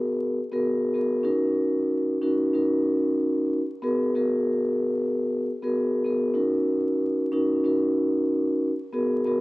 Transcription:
0.00 0.37 B3 loud
0.00 0.37 F#4 medium
0.00 0.37 G#4 medium
0.00 0.37 A#4 loud
0.52 0.92 B3 medium
0.52 0.92 F#4 medium
0.52 0.93 G#4 medium
0.52 0.93 A#4 loud
0.94 1.24 B3 medium
0.94 1.23 F#4 medium
0.94 1.25 G#4 medium
0.94 1.24 A#4 medium
1.23 2.14 C#4 medium
1.23 2.15 D#4 medium
1.23 2.15 F#4 medium
1.23 2.15 A#4 loud
2.21 2.52 C#4 medium
2.21 2.52 D#4 medium
2.21 2.52 F#4 medium
2.21 2.52 A#4 loud
2.53 3.58 C#4 medium
2.53 3.58 D#4 medium
2.53 3.58 F#4 medium
2.53 3.59 A#4 loud
3.82 4.12 B3 loud
3.82 4.12 F#4 medium
3.82 4.12 G#4 medium
3.82 4.12 A#4 loud
4.15 5.47 B3 medium
4.15 5.47 F#4 medium
4.15 5.48 G#4 medium
4.15 5.48 A#4 loud
5.62 6.03 B3 medium
5.62 6.03 F#4 medium
5.62 6.03 G#4 medium
5.62 6.04 A#4 loud
6.05 6.35 B3 medium
6.05 6.34 F#4 medium
6.05 6.35 G#4 medium
6.05 6.34 A#4 medium
6.34 7.25 C#4 loud
6.34 7.25 D#4 medium
6.34 7.26 F#4 medium
6.34 7.26 A#4 medium
7.32 7.62 C#4 medium
7.32 7.62 D#4 medium
7.32 7.63 F#4 medium
7.32 7.63 A#4 loud
7.64 8.69 C#4 medium
7.64 8.69 D#4 medium
7.64 8.69 F#4 medium
7.64 8.69 A#4 loud
8.93 9.22 B3 medium
8.93 9.23 F#4 medium
8.93 9.23 G#4 medium
8.93 9.23 A#4 loud
9.26 9.41 B3 medium
9.26 9.41 F#4 medium
9.26 9.41 G#4 medium
9.26 9.41 A#4 loud

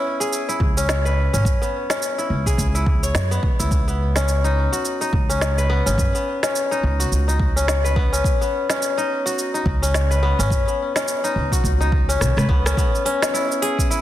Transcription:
0.00 1.22 B3 medium
0.00 0.77 C#4 medium
0.00 0.48 E4 medium
0.20 1.57 G#4 medium
0.20 shaker medium
0.33 shaker medium
0.49 2.05 E4 medium
0.49 shaker soft
0.60 1.26 C#2 medium
0.60 kick loud
0.77 1.33 C#4 medium
0.77 shaker medium
0.89 snare medium
0.89 shaker medium
1.05 2.28 B4 medium
1.05 shaker soft
1.33 1.42 G#1 medium
1.33 1.89 C#4 medium
1.33 shaker medium
1.45 1.57 F#2 medium
1.45 kick loud
1.45 shaker medium
1.62 3.31 B3 medium
1.62 shaker soft
1.90 3.64 C#4 medium
1.90 snare medium
1.90 shaker medium
2.02 shaker medium
2.18 2.74 E4 medium
2.18 shaker soft
2.30 2.52 C#2 medium
2.46 3.83 G#4 medium
2.46 kick medium
2.46 shaker medium
2.58 3.14 C#2 medium
2.58 kick medium
2.58 shaker medium
2.75 3.59 E4 medium
2.75 shaker soft
2.86 kick loud
3.03 4.18 C#5 medium
3.03 shaker medium
3.15 3.37 F#2 medium
3.15 snare medium
3.15 shaker medium
3.31 3.87 B3 medium
3.31 shaker soft
3.43 3.55 C#2 medium
3.43 kick loud
3.59 4.66 C#2 medium
3.59 4.50 E4 medium
3.59 shaker medium
3.71 kick loud
3.71 shaker soft
3.88 5.69 B3 medium
3.88 shaker soft
4.16 5.29 C#4 medium
4.16 snare medium
4.16 shaker medium
4.28 shaker medium
4.44 5.01 D#4 medium
4.44 shaker soft
4.72 6.19 F#4 medium
4.72 shaker medium
4.85 shaker medium
5.01 6.63 D#4 medium
5.01 shaker soft
5.13 5.79 C#2 medium
5.13 kick loud
5.29 5.86 C#4 medium
5.29 shaker medium
5.41 snare medium
5.41 shaker medium
5.58 6.81 B4 medium
5.58 shaker soft
5.70 6.14 B3 loud
5.86 5.95 G#1 medium
5.86 6.43 C#4 medium
5.86 shaker medium
5.98 6.10 F#2 medium
5.98 kick loud
5.98 shaker medium
6.15 7.96 B3 medium
6.15 shaker soft
6.43 7.56 C#4 medium
6.43 snare medium
6.43 shaker medium
6.55 shaker medium
6.71 7.27 D#4 medium
6.71 shaker soft
6.83 7.05 C#2 medium
7.00 8.46 F#4 medium
7.00 shaker medium
7.12 8.20 C#2 medium
7.12 shaker medium
7.28 8.90 D#4 medium
7.28 shaker soft
7.39 kick loud
7.56 8.12 C#4 medium
7.56 shaker medium
7.68 snare medium
7.68 shaker medium
7.84 9.07 B4 medium
7.84 shaker soft
7.96 8.41 B3 loud
7.96 kick loud
8.13 8.69 C#4 medium
8.13 shaker medium
8.24 kick loud
8.24 shaker medium
8.41 10.22 B3 medium
8.41 shaker soft
8.69 9.82 C#4 medium
8.69 snare medium
8.69 shaker medium
8.82 shaker medium
8.98 9.54 D#4 medium
8.98 shaker soft
9.26 10.72 F#4 medium
9.26 shaker medium
9.39 shaker medium
9.54 11.16 D#4 medium
9.54 shaker soft
9.66 10.32 C#2 medium
9.66 kick loud
9.82 10.39 C#4 medium
9.82 shaker medium
9.94 snare medium
9.94 shaker soft
10.11 11.34 B4 medium
10.11 shaker soft
10.23 10.67 B3 loud
10.39 10.48 G#1 medium
10.39 10.95 C#4 medium
10.39 shaker medium
10.50 10.63 F#2 loud
10.50 kick loud
10.50 shaker medium
10.67 12.49 B3 medium
10.67 shaker soft
10.96 12.08 C#4 medium
10.96 snare medium
10.96 shaker medium
11.08 shaker medium
11.24 11.80 D#4 medium
11.24 shaker soft
11.36 11.58 C#2 medium
11.52 12.99 F#4 medium
11.52 kick medium
11.52 shaker medium
11.64 12.20 C#2 medium
11.64 kick medium
11.64 shaker medium
11.81 13.40 D#4 medium
11.81 shaker soft
11.92 kick loud
12.09 12.65 C#4 medium
12.09 shaker medium
12.21 12.33 B1 loud
12.21 cross-stick medium
12.21 shaker medium
12.37 12.46 C#2 loud
12.37 13.60 B4 medium
12.37 cross-stick medium
12.37 shaker soft
12.49 12.71 C#2 medium
12.49 12.77 B3 medium
12.49 kick medium
12.66 13.05 C#4 medium
12.66 cross-stick medium
12.66 shaker medium
12.77 14.01 B3 loud
12.77 kick loud
12.77 shaker medium
12.95 shaker soft
13.05 14.01 C#4 medium
13.05 open hi-hat medium
13.22 snare medium
13.22 shaker medium
13.34 13.90 E4 medium
13.34 shaker medium
13.52 shaker soft
13.62 14.01 G#4 medium
13.62 open hi-hat medium
13.79 kick medium
13.79 shaker medium
13.90 14.01 E4 medium
13.90 shaker medium

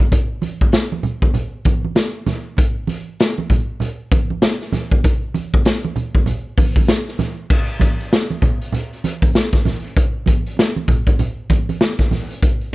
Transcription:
0.12 kick loud
0.12 closed hi-hat medium
0.42 closed hi-hat medium
0.42 high conga medium
0.61 kick medium
0.72 snare loud
0.72 closed hi-hat medium
0.72 muted conga soft
0.92 high conga medium
1.03 closed hi-hat medium
1.03 low conga medium
1.22 kick medium
1.34 closed hi-hat medium
1.34 low conga medium
1.65 kick loud
1.65 closed hi-hat medium
1.65 muted conga soft
1.65 high conga medium
1.84 high conga medium
1.95 snare loud
1.95 closed hi-hat medium
1.95 muted conga soft
2.27 snare soft
2.27 closed hi-hat medium
2.27 muted conga soft
2.27 high conga medium
2.27 low conga medium
2.57 kick loud
2.57 closed hi-hat loud
2.57 muted conga soft
2.87 closed hi-hat medium
2.87 high conga medium
3.20 snare loud
3.20 closed hi-hat medium
3.38 high conga medium
3.50 kick medium
3.50 closed hi-hat medium
3.50 low conga medium
3.80 closed hi-hat medium
3.80 low conga medium
4.12 kick loud
4.12 closed hi-hat medium
4.12 muted conga soft
4.12 high conga loud
4.30 high conga medium
4.42 snare loud
4.42 closed hi-hat medium
4.42 muted conga soft
4.62 snare soft
4.72 snare soft
4.72 closed hi-hat medium
4.72 high conga medium
4.72 low conga medium
4.91 kick medium
5.04 kick loud
5.04 closed hi-hat medium
5.04 muted conga soft
5.34 closed hi-hat medium
5.34 muted conga soft
5.34 high conga medium
5.54 kick medium
5.65 snare loud
5.65 closed hi-hat loud
5.65 muted conga soft
5.85 high conga medium
5.96 closed hi-hat medium
5.96 low conga medium
6.15 kick medium
6.26 closed hi-hat medium
6.26 muted conga soft
6.26 low conga medium
6.57 kick loud
6.57 open hi-hat medium
6.57 high conga medium
6.76 kick medium
6.76 high conga medium
6.87 snare loud
6.87 closed hi-hat medium
6.87 muted conga soft
7.08 snare soft
7.19 snare soft
7.19 closed hi-hat medium
7.19 muted conga soft
7.19 high conga medium
7.19 low conga medium
7.50 kick loud
7.50 crash loud
7.80 kick medium
7.80 closed hi-hat medium
7.80 muted conga soft
7.80 high conga medium
8.00 closed hi-hat medium
8.13 snare loud
8.30 closed hi-hat soft
8.30 high conga medium
8.42 kick medium
8.42 closed hi-hat medium
8.42 muted conga soft
8.42 low conga medium
8.61 closed hi-hat medium
8.72 closed hi-hat medium
8.72 muted conga soft
8.72 low conga medium
8.93 closed hi-hat soft
9.04 closed hi-hat medium
9.04 muted conga soft
9.04 high conga medium
9.22 kick medium
9.22 closed hi-hat medium
9.22 high conga medium
9.34 snare loud
9.34 muted conga soft
9.53 kick medium
9.53 snare soft
9.53 closed hi-hat soft
9.65 snare soft
9.65 open hi-hat medium
9.65 muted conga soft
9.65 high conga medium
9.65 low conga medium
9.84 closed hi-hat soft
9.97 kick loud
9.97 closed hi-hat medium
10.26 kick medium
10.26 closed hi-hat medium
10.26 muted conga soft
10.26 high conga medium
10.46 closed hi-hat medium
10.57 snare loud
10.57 muted conga soft
10.76 high conga medium
10.88 kick medium
10.88 closed hi-hat medium
10.88 muted conga soft
10.88 low conga medium
11.07 kick medium
11.07 closed hi-hat medium
11.19 closed hi-hat medium
11.19 muted conga soft
11.19 low conga medium
11.50 kick medium
11.50 closed hi-hat medium
11.50 muted conga soft
11.50 high conga loud
11.69 closed hi-hat medium
11.69 high conga medium
11.81 snare loud
11.99 kick medium
11.99 snare soft
11.99 closed hi-hat soft
12.11 snare soft
12.11 open hi-hat medium
12.11 muted conga soft
12.11 high conga medium
12.11 low conga medium
12.31 closed hi-hat medium
12.42 kick loud
12.42 closed hi-hat medium
12.42 muted conga soft
12.61 closed hi-hat soft

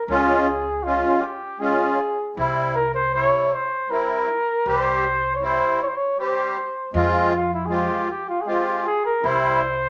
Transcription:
0.06 1.00 C#2 medium
0.06 0.47 G#3 medium
0.06 0.47 C#4 medium
0.06 0.84 G#4 medium
0.11 0.48 F4 medium
0.83 1.23 G#3 medium
0.83 1.23 C#4 medium
0.83 1.22 F4 medium
0.83 1.24 F4 medium
1.21 1.61 G4 medium
1.59 1.98 G#3 medium
1.59 1.99 C#4 medium
1.59 1.99 F4 medium
1.59 2.37 G#4 medium
2.36 3.29 C2 medium
2.36 2.75 G3 medium
2.36 2.75 C4 medium
2.36 2.75 E4 medium
2.75 2.93 A#4 medium
2.94 3.12 C5 medium
3.13 3.52 C3 medium
3.13 3.51 G3 medium
3.13 3.52 E4 medium
3.13 3.55 C#5 medium
3.53 3.92 C5 medium
3.89 4.28 G3 medium
3.89 4.28 C4 soft
3.89 4.29 E4 medium
3.89 4.69 A#4 medium
4.65 5.58 C2 medium
4.65 5.04 G3 medium
4.65 5.04 C4 medium
4.65 5.05 G4 medium
4.65 5.35 C5 medium
5.36 5.46 C#5 medium
5.41 5.80 G3 medium
5.41 5.80 C4 medium
5.41 5.81 E4 medium
5.41 5.82 C5 medium
5.82 5.89 C#5 medium
5.88 5.97 C5 medium
5.96 6.19 C#5 medium
6.18 6.56 G3 medium
6.18 6.57 C4 medium
6.18 6.57 G4 medium
6.18 6.92 C5 medium
6.92 7.86 F2 medium
6.92 7.32 G#3 medium
6.92 7.33 C4 medium
6.92 7.33 F4 medium
7.35 7.52 F4 medium
7.54 7.67 E4 medium
7.65 8.08 G#3 medium
7.65 8.08 C4 medium
7.65 7.74 G#4 soft
7.70 8.09 F4 medium
7.70 8.10 G4 medium
8.11 8.28 G4 medium
8.29 8.42 F4 medium
8.41 8.49 G#4 medium
8.45 8.85 G#3 medium
8.45 8.85 C4 medium
8.45 8.86 F4 medium
8.45 8.86 G4 medium
8.86 9.04 G#4 medium
9.05 9.28 A#4 medium
9.21 9.89 C2 medium
9.21 9.61 G3 medium
9.21 9.62 C4 medium
9.21 9.62 E4 medium
9.26 9.89 C5 medium

